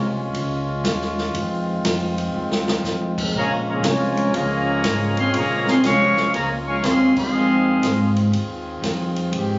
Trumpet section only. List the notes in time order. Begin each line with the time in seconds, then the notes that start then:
Already playing: F4 A#4 C#5 G#5
3.37 G#4 C#5 F5 A#5
3.69 G#4 C#5 F5 A#5
3.87 F4 A#4 C#5 G#5
4.36 G#4 C#5 F5 A#5
5.20 G#4 C#5 F5 C6
5.36 G#4 C#5 F5 A#5
5.71 G#4 C#5 F5 C6
5.85 A#4 F5 G#5 C#6
6.35 G#4 C#5 F5 A#5
6.68 A#4 F5 G#5 C#6
6.84 G#4 C#5 F5 C6
7.18 G#4 D#5 F5 C6